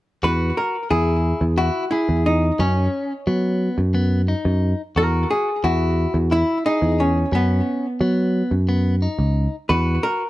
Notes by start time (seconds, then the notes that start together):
0.23 E2 F#4 B4
0.57 A#4
0.90 E2 E4 G#4
1.41 E2
1.58 E4 F#4
1.91 E4 G#4
2.09 E2
2.26 D#4
2.59 F#2 C#4
3.27 F#3 B3
3.78 F#2
3.95 B3
4.28 D#4
4.45 F#2
4.96 E2 F#4 A#4
5.31 G#4
5.64 E2 E4 F#4
6.14 E2
6.31 E4
6.66 D#4 G#4
6.82 E2
7.00 C#4
7.32 F#2 B3 C#4
8.01 F#3 B3
8.51 F#2
8.69 B3
9.02 D#4
9.19 C#2
9.69 E2 F#4 B4
10.03 A#4